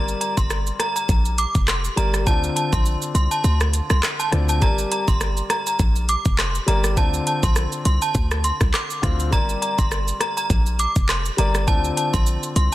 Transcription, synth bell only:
0.21 0.35 A#5 medium
0.37 0.48 C6 medium
0.80 0.93 A#5 medium
0.96 1.07 A#5 medium
1.38 1.52 D6 medium
1.68 1.82 C6 medium
1.97 2.11 A#5 medium
2.27 2.40 A5 loud
2.56 2.70 A5 medium
2.73 2.83 C6 medium
3.15 3.29 C6 medium
3.31 3.42 A5 medium
3.44 3.58 C6 medium
3.90 4.01 C6 medium
4.20 4.30 A5 medium
4.49 4.60 A5 medium
4.62 4.76 A#5 medium
4.92 5.05 A#5 medium
5.08 5.19 C6 medium
5.50 5.64 A#5 medium
5.67 5.78 A#5 medium
6.09 6.23 D6 medium
6.39 6.52 C6 medium
6.68 6.82 A#5 medium
6.97 7.11 A5 loud
7.27 7.41 A5 medium
7.43 7.54 C6 medium
7.85 7.99 C6 medium
8.02 8.13 A5 medium
8.44 8.58 C6 medium
8.74 8.87 D6 medium
9.03 9.17 C6 medium
9.32 9.46 A#5 loud
9.62 9.76 A#5 medium
9.79 9.89 C6 medium
10.21 10.35 A#5 medium
10.37 10.48 A#5 medium
10.80 10.93 D6 medium
11.09 11.23 C6 medium
11.38 11.52 A#5 medium
11.68 11.82 A5 loud
11.97 12.11 A5 medium
12.13 12.24 C6 medium
12.56 12.70 C6 medium

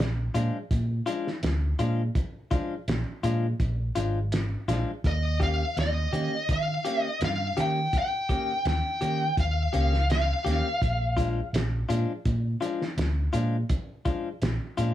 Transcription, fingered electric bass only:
0.00 0.28 A#1 medium
0.35 0.50 A#2 medium
0.71 1.00 A#2 medium
1.43 1.72 D2 loud
1.79 2.08 A#2 medium
2.88 3.03 A#1 medium
3.24 3.53 A#2 medium
3.60 3.89 A#1 medium
3.96 4.54 G#1 medium
4.68 4.83 A#1 medium
5.04 5.62 D#2 medium
5.77 6.06 D#2 medium
6.13 6.27 D#3 medium
6.49 6.78 D#3 medium
7.22 7.50 G2 medium
7.58 7.86 D#3 loud
8.65 8.80 D#2 medium
9.02 9.31 D#3 medium
9.37 9.66 D#2 medium
9.73 10.31 C#2 medium
10.46 10.61 D#2 medium
10.82 11.40 A#1 loud
11.53 11.82 A#1 medium
11.89 12.04 A#2 medium
12.26 12.55 A#2 medium
12.97 13.27 D2 medium
13.34 13.63 A#2 medium
14.42 14.57 A#1 medium
14.78 14.94 A#2 medium

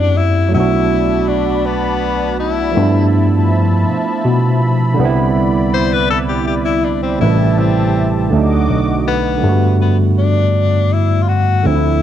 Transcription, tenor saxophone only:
0.00 0.19 D4 loud
0.17 0.54 E4 medium
0.54 1.30 E4 medium
1.28 1.67 D4 medium
1.66 2.39 B3 loud
2.40 3.09 E4 medium
5.74 5.95 C5 loud
5.93 6.10 B4 loud
6.10 6.18 A4 loud
6.29 6.45 G4 medium
6.47 6.55 G4 medium
6.66 6.86 E4 loud
6.85 7.02 D4 medium
7.03 7.19 C4 medium
7.21 7.60 E4 medium
7.59 8.32 C4 medium
9.08 9.76 B3 medium
9.82 9.98 B3 medium
10.19 10.94 D4 medium
10.93 11.24 E4 medium
11.22 11.30 F4 medium
11.29 11.67 F#4 medium
11.66 12.02 E4 loud

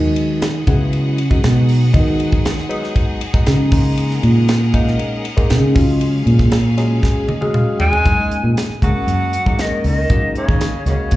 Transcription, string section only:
0.00 3.69 F#4 medium
0.00 8.01 G#4 medium
0.00 5.72 D#5 medium
0.00 3.69 F#5 medium
3.71 5.73 A#4 medium
3.71 5.73 F#5 medium
5.76 8.03 F#3 medium
5.76 8.03 C#4 medium
5.76 8.03 F5 medium

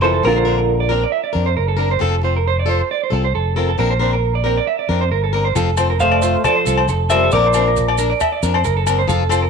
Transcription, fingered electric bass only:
0.00 0.20 F1 medium
0.24 1.04 A#1 medium
1.35 1.55 F2 medium
1.57 1.97 F#1 medium
2.01 2.81 F1 medium
3.12 3.32 C2 medium
3.34 3.74 F1 medium
3.79 4.58 A#1 medium
4.89 5.09 F2 medium
5.11 5.51 G1 medium
5.56 6.35 F1 medium
6.67 6.86 C2 medium
6.89 7.28 F1 medium
7.33 8.12 A#1 medium
8.43 8.63 F2 medium
8.65 9.05 F#1 medium
9.09 9.50 F1 medium

